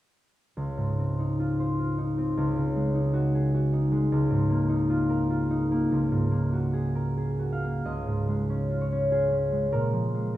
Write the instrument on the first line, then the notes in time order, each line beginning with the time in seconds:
harp
0.57 C#2
0.77 G#2
0.98 C4
1.19 D#4
1.40 F4
1.60 C5
1.79 F4
1.98 D#4
2.18 C4
2.37 C#2
2.57 C#3
2.76 G#3
2.94 D#4
3.14 F#4
3.35 G#4
3.54 F#4
3.73 D#4
3.92 G#3
4.12 C#2
4.31 G#2
4.50 A#3
4.69 D#4
4.90 F4
5.09 A#4
5.30 F4
5.50 D#4
5.71 A#3
5.92 C#2
6.12 G#2
6.31 A#3
6.53 F#4
6.73 G#4
6.95 A#4
7.17 G#4
7.39 F#4
7.52 F5
7.64 A#3
7.85 C#2 D#5
8.07 G#2
8.28 G#3
8.50 C#4
8.70 F4
8.81 C#5
8.92 C#4
9.11 F4 G#4
9.32 C#4
9.52 G#3
9.73 A#2 A#4
9.93 F3
10.15 G#3